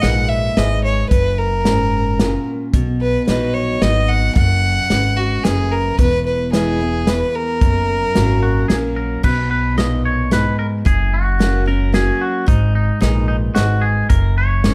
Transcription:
Already playing: G#2
0.02 A#1 A#2 D#4 G#4 B4 F#5, snare, closed hi-hat
0.29 E5
0.57 G#1 G#2 D#4 G#4 B4 D#5, snare, closed hi-hat
0.84 C#5
1.09 F#1 F#2 B4, kick, closed hi-hat
1.38 A#4
1.65 G#2 C#4 F#4 A#4, snare, closed hi-hat
2.19 A#2 C#4 F#4 A#4, snare, closed hi-hat
2.73 B1 B2, kick, closed hi-hat
3.01 B4
3.27 A#1 F#3 B3 D#4 F#4 B4, snare, closed hi-hat
3.54 C#5
3.81 G#1 F#3 B3 D#4 F#4 B4 D#5, snare, closed hi-hat
4.08 F#5
4.35 F#1 F#2 F#5, kick, closed hi-hat
4.90 G#1 G#2 C#4 F#4 B4, snare, closed hi-hat
5.17 F#4
5.43 F#1 F#2 C#4 F#4 G#4 B4, snare, closed hi-hat
5.72 A#4
5.98 E1 E2 B4, kick, closed hi-hat
6.26 B4
6.53 E3 G#3 B3 E4 G#4 B4, snare, closed hi-hat
6.81 B3 E4
7.07 E2 E4 G#4 B4, snare, closed hi-hat
7.35 A#4
7.61 F#1 F#2, kick, closed hi-hat
8.15 G#1 F#3 A#3 C#4 F#4 A#4, snare, closed hi-hat
8.43 F#4
8.68 A#1 F#3 A#3 C#4 F#4 G#4 A#4, snare, closed hi-hat
8.96 A#4
9.23 B1 B2 B4, kick, crash
9.51 B4
9.78 A#2 D#4 F#4 B4 D#5, snare, closed hi-hat
10.05 C#5
10.31 G#2 D#4 F#4 B4, snare, closed hi-hat
10.59 A#4
10.85 F#1 F#2 G#4, kick, closed hi-hat
11.14 F#4
11.39 F#3 A#3 C#4 F#4 A#4, snare, closed hi-hat
11.66 C#4 F#4 A#4
11.92 F#3 A#3 C#4 F#4 G#4 A#4, snare, closed hi-hat
12.21 F#4
12.46 G#1 G#2 D#4, kick, closed hi-hat
12.75 D#4
13.00 A#1 A#2 D#4 G#4 B4, snare, closed hi-hat
13.28 D#4
13.55 G#1 G#2 D#4 F#4 G#4 B4, snare, closed hi-hat
13.81 G#4
14.09 F#1 F#2 A#4, kick, closed hi-hat
14.38 C#5
14.63 G#2 C#4 F#4 A#4, snare, closed hi-hat

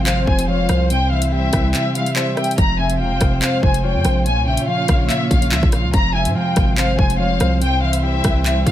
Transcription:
Already playing: G#1 C3 F3 G#3 C4 F4 C5
0.06 F2 C5 F5, clap, closed hi-hat
0.27 F1 C3 G#5, kick
0.39 closed hi-hat
0.48 F3 C#5 F5
0.69 C2 F2 C5, cross-stick, closed hi-hat
0.90 C3 G3 C4 E4 G5, closed hi-hat
1.11 E3 E5 F5
1.22 closed hi-hat
1.32 G3 E5 G5
1.53 C2 E3, kick, cross-stick, closed hi-hat
1.74 C3 E5, clap, closed hi-hat
1.95 E3 E5 F5, closed hi-hat
2.06 closed hi-hat
2.16 G3 C5 E5, clap
2.37 C3 E5 G5, cross-stick, closed hi-hat
2.44 closed hi-hat
2.51 closed hi-hat
2.58 F1 F2 G#3 C4 F4 C5 A#5, kick, closed hi-hat
2.79 C3 E5 G#5
2.90 closed hi-hat
2.99 E1 F3 F5 G5
3.11 F1
3.21 F1 C3, kick, cross-stick, closed hi-hat
3.42 F2 C5 F5, clap, closed hi-hat
3.63 F1 C3 G#5, kick
3.74 closed hi-hat
3.84 F3 C#5 G5
3.95 F2
4.05 A#1 F2 C5, cross-stick, closed hi-hat
4.26 A#2 A#3 C#4 C#5 G#5, closed hi-hat
4.37 C2
4.47 A#1 C#3 E5 G5
4.57 closed hi-hat
4.67 F3 F5
4.88 A#1 C#3, kick, cross-stick, closed hi-hat
5.09 A#2 E5, clap, closed hi-hat
5.31 A#1 C#3 F5, kick, closed hi-hat
5.42 closed hi-hat
5.51 C#2 F3 E5, clap
5.63 A#1, kick
5.72 A#2 F5, cross-stick, closed hi-hat
5.84 C#2
5.93 F1 F2 G#3 C4 C5 A#5, kick, closed hi-hat
6.15 C3 E5 G#5
6.25 G#2, closed hi-hat
6.35 F3 F5 G5
6.56 G#1 C3, kick, cross-stick, closed hi-hat
6.77 F2 C5 F5, clap, closed hi-hat
6.99 F1 C3 G#5, kick
7.10 closed hi-hat
7.20 F3 C#5 F5
7.40 C2 F2 C5, cross-stick, closed hi-hat
7.61 C3 G3 E4 G5, closed hi-hat
7.83 E3 E5 F5
7.93 closed hi-hat
8.03 G3 E5 G5
8.24 C2 E3, kick, cross-stick, closed hi-hat
8.45 C3 E5, clap, closed hi-hat
8.66 C2 E3 E5 F5, kick, closed hi-hat

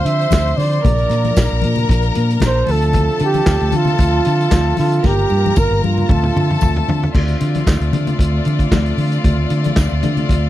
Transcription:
Already playing: D3 F3 C4 D4 F4 C5 C6
0.05 D3 E5, closed hi-hat, muted conga
0.21 closed hi-hat
0.31 D2, kick, snare, clap, tambourine, muted conga, high conga
0.47 closed hi-hat
0.57 D3 D5, snare, open hi-hat, high conga
0.73 closed hi-hat
0.84 A#1 A#3 D4 A#4 A#5, kick, closed hi-hat, muted conga, low conga
0.98 closed hi-hat
1.10 A#2, closed hi-hat, muted conga
1.25 closed hi-hat, high conga
1.36 A#1, kick, snare, clap, tambourine, muted conga
1.52 A#1
1.62 A#2, closed hi-hat, muted conga, high conga
1.76 closed hi-hat, low conga
1.89 A#1, kick, closed hi-hat
2.02 closed hi-hat
2.15 A#2, closed hi-hat, muted conga
2.30 closed hi-hat
2.40 A#1, kick, snare, clap, tambourine, muted conga, high conga
2.46 C5
2.67 D2 D3 C4 F4 A4 E5 A5, open hi-hat, muted conga, high conga
2.72 A4
2.82 closed hi-hat
2.93 kick, closed hi-hat, muted conga, low conga
3.20 D3, closed hi-hat, muted conga
3.24 G4
3.34 closed hi-hat, high conga
3.46 D2, kick, snare, clap, tambourine, muted conga
3.60 D2, closed hi-hat
3.72 D3, closed hi-hat, muted conga, high conga
3.76 F4
3.85 closed hi-hat, low conga
3.98 D2, kick, closed hi-hat, muted conga
4.25 D3, closed hi-hat, muted conga
4.41 closed hi-hat
4.51 D2, kick, snare, clap, tambourine, muted conga, high conga
4.77 D3 F4, snare, open hi-hat, muted conga, high conga
4.92 closed hi-hat
5.04 G1 G3 A#3 G4 A#4 A#5, kick, snare, muted conga, low conga
5.30 G2, muted conga
5.46 high conga
5.56 G1 A#4, kick, high tom, tambourine
5.71 G1
5.84 G2 F4, muted conga, high conga
5.98 low conga
6.09 D2 D3 A3 C4 F4 A4 E5 A5, kick, mid tom, muted conga
6.23 mid tom
6.36 D3, mid tom, muted conga
6.50 mid tom
6.61 D2, kick, mid tom, tambourine, high conga
6.77 floor tom
6.88 D3, floor tom, muted conga, high conga
7.03 floor tom
7.13 D2 D3 A3 C4 F4 D5 E5, kick, crash, low conga
7.28 closed hi-hat
7.41 D3, closed hi-hat, muted conga
7.55 closed hi-hat, high conga
7.67 D2, kick, snare, clap, tambourine, muted conga
7.81 D2, closed hi-hat
7.93 D3, closed hi-hat, high conga, low conga
8.07 closed hi-hat, low conga
8.19 D2, kick, closed hi-hat
8.45 D3, closed hi-hat, muted conga
8.59 kick, closed hi-hat
8.71 D2, kick, snare, clap, tambourine, high conga
8.86 closed hi-hat
8.98 D3, open hi-hat, high conga
9.12 closed hi-hat
9.24 D2, kick, closed hi-hat, muted conga, low conga
9.50 D3, closed hi-hat, muted conga
9.64 closed hi-hat, high conga
9.76 D2, kick, snare, clap, tambourine
9.92 D2
10.03 D3, closed hi-hat, muted conga, high conga, low conga
10.17 closed hi-hat, low conga
10.29 D2, kick, closed hi-hat, muted conga

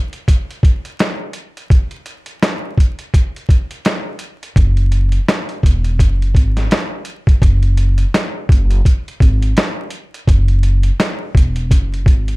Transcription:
0.13 closed hi-hat
0.28 kick, closed hi-hat
0.51 closed hi-hat
0.63 kick, closed hi-hat
0.85 closed hi-hat
0.99 snare, closed hi-hat
1.33 closed hi-hat
1.57 closed hi-hat
1.70 kick, closed hi-hat
1.91 closed hi-hat
2.06 closed hi-hat
2.26 closed hi-hat
2.43 snare, closed hi-hat
2.78 kick, closed hi-hat
2.99 closed hi-hat
3.14 kick, closed hi-hat
3.36 closed hi-hat
3.49 kick, closed hi-hat
3.71 closed hi-hat
3.85 snare, closed hi-hat
4.19 closed hi-hat
4.43 closed hi-hat
4.56 F#1, kick, closed hi-hat
4.77 closed hi-hat
4.92 closed hi-hat
5.12 closed hi-hat
5.28 snare, closed hi-hat
5.49 closed hi-hat
5.63 E1, kick, closed hi-hat
5.85 closed hi-hat
5.99 F#1, kick, closed hi-hat
6.22 closed hi-hat
6.35 G#1, kick, closed hi-hat
6.57 snare, closed hi-hat
6.71 snare, closed hi-hat
7.05 closed hi-hat
7.27 kick, closed hi-hat
7.42 F#1, kick, closed hi-hat
7.63 closed hi-hat
7.77 closed hi-hat
7.98 closed hi-hat
8.14 snare, closed hi-hat
8.49 F#1, kick, closed hi-hat
8.71 closed hi-hat
8.85 kick, closed hi-hat
9.08 closed hi-hat
9.20 G#1, kick, closed hi-hat
9.42 closed hi-hat
9.57 snare, closed hi-hat
9.91 closed hi-hat
10.14 closed hi-hat
10.27 F#1, kick, closed hi-hat
10.48 closed hi-hat
10.63 closed hi-hat
10.83 closed hi-hat
11.00 snare, closed hi-hat
11.35 E1, kick, closed hi-hat
11.56 closed hi-hat
11.71 F#1, kick, closed hi-hat
11.94 closed hi-hat
12.06 G#1, kick, closed hi-hat
12.28 closed hi-hat

